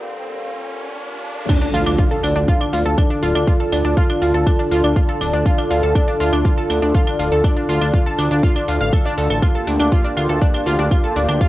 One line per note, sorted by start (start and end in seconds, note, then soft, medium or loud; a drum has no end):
0.00 1.45 D3 medium
0.00 1.45 G3 medium
0.00 1.45 A#3 medium
0.00 1.45 F4 medium
0.00 riser medium
1.49 9.39 D3 medium
1.49 9.39 D4 medium
1.49 1.58 D4 medium
1.49 10.04 F4 loud
1.49 11.48 F4 medium
1.49 9.39 A4 medium
1.49 1.58 D5 medium
1.49 kick loud
1.49 closed hi-hat medium
1.49 crash loud
1.49 impact medium
1.49 claves medium
1.62 1.73 D4 medium
1.62 1.73 D5 medium
1.62 closed hi-hat soft
1.74 1.85 D2 medium
1.74 1.82 F4 loud
1.74 1.82 F5 medium
1.74 open hi-hat loud
1.86 1.97 D2 medium
1.86 1.95 D4 medium
1.86 1.95 D5 medium
1.86 closed hi-hat soft
1.86 claves medium
1.98 2.07 F4 medium
1.98 10.11 D5 medium
1.98 2.07 F5 medium
1.98 kick loud
1.98 closed hi-hat medium
2.11 2.23 A4 medium
2.11 2.23 A5 medium
2.11 closed hi-hat soft
2.23 2.34 D2 medium
2.23 2.32 D4 medium
2.23 2.32 D5 medium
2.23 open hi-hat medium
2.23 claves medium
2.30 9.43 A5 medium
2.36 2.46 D2 medium
2.36 2.48 D4 medium
2.36 2.48 D5 medium
2.36 closed hi-hat soft
2.48 2.57 F4 loud
2.48 2.57 F5 medium
2.48 kick loud
2.48 closed hi-hat medium
2.61 2.69 D4 medium
2.61 2.69 D5 medium
2.61 closed hi-hat soft
2.61 claves medium
2.73 2.84 D2 loud
2.73 2.82 F4 medium
2.73 2.82 F5 medium
2.73 open hi-hat loud
2.86 2.96 D2 medium
2.86 2.97 A4 medium
2.86 2.97 A5 medium
2.86 closed hi-hat soft
2.98 3.06 D4 medium
2.98 3.06 D5 medium
2.98 kick loud
2.98 closed hi-hat medium
2.98 claves medium
3.10 3.22 D4 medium
3.10 3.22 D5 medium
3.10 closed hi-hat medium
3.23 3.33 D1 medium
3.23 3.31 F4 loud
3.23 3.31 F5 medium
3.23 open hi-hat medium
3.35 3.46 D2 medium
3.35 3.44 D4 medium
3.35 3.44 D5 medium
3.35 closed hi-hat soft
3.35 claves medium
3.47 3.56 F4 medium
3.47 3.56 F5 medium
3.47 kick loud
3.47 closed hi-hat medium
3.60 3.72 A4 medium
3.60 3.72 A5 medium
3.60 closed hi-hat soft
3.72 3.83 D2 medium
3.72 3.81 D4 medium
3.72 3.81 D5 medium
3.72 open hi-hat loud
3.72 claves medium
3.85 3.95 D2 medium
3.85 3.96 D4 medium
3.85 3.96 D5 medium
3.85 closed hi-hat soft
3.97 4.06 F4 loud
3.97 4.06 F5 medium
3.97 kick loud
3.97 closed hi-hat medium
4.09 4.18 D4 medium
4.09 4.18 D5 medium
4.09 closed hi-hat soft
4.09 claves medium
4.22 4.32 D2 medium
4.22 4.30 F4 medium
4.22 4.30 F5 medium
4.22 open hi-hat medium
4.34 4.45 D2 medium
4.34 4.46 A4 medium
4.34 4.46 A5 medium
4.34 closed hi-hat soft
4.47 4.55 D4 medium
4.47 4.55 D5 medium
4.47 kick loud
4.47 closed hi-hat medium
4.47 claves medium
4.59 4.71 D4 medium
4.59 4.71 D5 medium
4.59 closed hi-hat soft
4.71 4.82 D2 loud
4.71 4.80 F4 loud
4.71 4.80 F5 medium
4.71 open hi-hat loud
4.84 4.94 D2 medium
4.84 4.92 D4 medium
4.84 4.92 D5 medium
4.84 closed hi-hat soft
4.84 claves medium
4.96 5.05 F4 medium
4.96 5.05 F5 medium
4.96 kick loud
4.96 closed hi-hat medium
5.09 5.20 A4 medium
5.09 5.20 A5 medium
5.09 closed hi-hat soft
5.21 5.32 D1 medium
5.21 5.30 D4 medium
5.21 5.30 D5 medium
5.21 open hi-hat loud
5.21 claves medium
5.33 5.44 D2 medium
5.33 5.45 D4 medium
5.33 5.45 D5 medium
5.33 closed hi-hat soft
5.46 5.54 F4 loud
5.46 5.54 F5 medium
5.46 kick loud
5.46 closed hi-hat medium
5.58 5.67 D4 medium
5.58 5.67 D5 medium
5.58 closed hi-hat soft
5.58 claves medium
5.71 5.81 D2 medium
5.71 5.79 F4 medium
5.71 5.79 F5 medium
5.71 open hi-hat loud
5.83 5.94 D2 medium
5.83 5.95 A4 medium
5.83 5.95 A5 medium
5.83 closed hi-hat soft
5.95 6.04 D4 medium
5.95 6.04 D5 medium
5.95 kick loud
5.95 closed hi-hat medium
5.95 claves medium
6.08 6.20 D4 medium
6.08 6.20 D5 medium
6.08 closed hi-hat soft
6.20 6.31 D2 medium
6.20 6.29 F4 loud
6.20 6.29 F5 medium
6.20 open hi-hat medium
6.33 6.43 D2 medium
6.33 6.41 D4 medium
6.33 6.41 D5 medium
6.33 closed hi-hat soft
6.33 claves medium
6.45 6.54 F4 medium
6.45 6.54 F5 medium
6.45 kick loud
6.45 closed hi-hat medium
6.58 6.69 A4 medium
6.58 6.69 A5 medium
6.58 closed hi-hat soft
6.70 6.80 D2 medium
6.70 6.78 D4 medium
6.70 6.78 D5 medium
6.70 open hi-hat loud
6.70 claves medium
6.82 6.93 D2 medium
6.82 6.94 D4 medium
6.82 6.94 D5 medium
6.82 closed hi-hat soft
6.94 7.03 F4 loud
6.94 7.03 F5 medium
6.94 kick loud
6.94 closed hi-hat medium
7.07 7.15 D4 medium
7.07 7.15 D5 medium
7.07 closed hi-hat soft
7.07 claves medium
7.19 7.30 D1 loud
7.19 7.28 F4 medium
7.19 7.28 F5 medium
7.19 open hi-hat loud
7.32 7.42 D2 medium
7.32 7.44 A4 medium
7.32 7.44 A5 medium
7.32 closed hi-hat soft
7.44 7.53 D4 medium
7.44 7.53 D5 medium
7.44 kick loud
7.44 closed hi-hat medium
7.44 claves medium
7.57 7.68 D4 medium
7.57 7.68 D5 soft
7.57 closed hi-hat soft
7.69 7.80 D2 loud
7.69 7.78 F4 loud
7.69 7.78 F5 medium
7.69 open hi-hat loud
7.82 7.92 D2 medium
7.82 7.90 D4 medium
7.82 7.90 D5 medium
7.82 closed hi-hat soft
7.82 claves medium
7.94 8.02 F4 medium
7.94 8.02 F5 medium
7.94 kick loud
7.94 closed hi-hat medium
8.06 8.18 A4 medium
8.06 8.18 A5 medium
8.06 closed hi-hat soft
8.19 8.29 D2 medium
8.19 8.27 D4 medium
8.19 8.27 D5 medium
8.19 open hi-hat loud
8.19 claves soft
8.31 8.42 D2 medium
8.31 8.43 D4 medium
8.31 8.43 D5 medium
8.31 closed hi-hat soft
8.43 8.52 F4 loud
8.43 8.52 F5 medium
8.43 kick loud
8.43 closed hi-hat medium
8.56 8.64 D4 medium
8.56 8.64 D5 medium
8.56 closed hi-hat soft
8.56 claves medium
8.68 8.79 D2 loud
8.68 8.77 F4 medium
8.68 8.77 F5 medium
8.68 open hi-hat loud
8.81 8.91 A1 medium
8.81 8.86 F5 loud
8.81 8.86 F6 medium
8.81 closed hi-hat soft
8.93 9.05 A4 medium
8.93 9.05 A5 medium
8.93 kick loud
8.93 closed hi-hat medium
8.93 claves medium
9.06 9.14 D4 loud
9.06 9.14 D5 medium
9.06 closed hi-hat soft
9.18 9.28 D2 medium
9.18 9.29 A4 medium
9.18 9.29 A5 medium
9.18 open hi-hat loud
9.30 9.41 A1 medium
9.30 9.42 A4 medium
9.30 9.42 A5 medium
9.30 closed hi-hat soft
9.30 claves soft
9.42 11.48 A#3 medium
9.42 9.51 F4 medium
9.42 11.48 G4 medium
9.42 9.51 F5 medium
9.42 kick loud
9.42 closed hi-hat medium
9.42 claves medium
9.55 9.67 A4 medium
9.55 9.67 A5 medium
9.55 closed hi-hat soft
9.63 11.48 F5 medium
9.67 9.78 D2 medium
9.67 9.76 D4 medium
9.67 9.76 D5 medium
9.67 open hi-hat loud
9.80 9.90 D2 medium
9.80 9.91 D4 medium
9.80 9.91 D5 medium
9.80 closed hi-hat soft
9.80 claves medium
9.92 10.01 F4 loud
9.92 10.01 F5 medium
9.92 kick loud
9.92 closed hi-hat medium
10.05 10.13 D4 medium
10.05 10.13 D5 medium
10.05 closed hi-hat soft
10.17 10.28 D2 medium
10.17 10.25 F4 medium
10.17 10.25 F5 medium
10.17 open hi-hat medium
10.17 claves soft
10.29 10.40 D2 medium
10.29 10.41 A4 medium
10.29 10.41 A5 medium
10.29 closed hi-hat soft
10.42 10.50 D4 medium
10.42 10.50 D5 medium
10.42 kick loud
10.42 closed hi-hat medium
10.54 10.66 D4 medium
10.54 10.66 D5 medium
10.54 closed hi-hat soft
10.54 claves medium
10.66 10.77 D2 loud
10.66 10.75 F4 loud
10.66 10.75 F5 medium
10.66 open hi-hat loud
10.79 10.89 D2 medium
10.79 10.87 D4 medium
10.79 10.87 D5 medium
10.79 closed hi-hat soft
10.91 11.00 F4 medium
10.91 11.00 F5 medium
10.91 kick loud
10.91 closed hi-hat medium
10.91 claves medium
11.04 11.15 A4 medium
11.04 11.15 A5 medium
11.04 closed hi-hat soft
11.16 11.27 D1 medium
11.16 11.25 D4 medium
11.16 11.25 D5 medium
11.16 open hi-hat medium
11.28 11.39 D2 medium
11.28 11.40 D4 medium
11.28 11.40 D5 medium
11.28 closed hi-hat soft
11.28 claves medium
11.41 11.48 F4 loud
11.41 11.48 F5 medium
11.41 kick loud
11.41 closed hi-hat medium